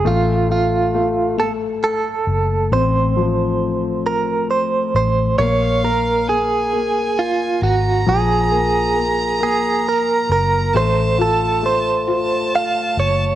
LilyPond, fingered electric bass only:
\new Staff \with { instrumentName = "Fingered electric bass" } { \clef bass \time 6/8 \key f \phrygian \tempo 4. = 45 a,,2~ a,,8 ges,,8 | a,,2~ a,,8 a,,8 | bes,,2~ bes,,8 aes,,8 | bes,,2~ bes,,8 ges,,8 |
a,,2~ a,,8 ges,,8 | }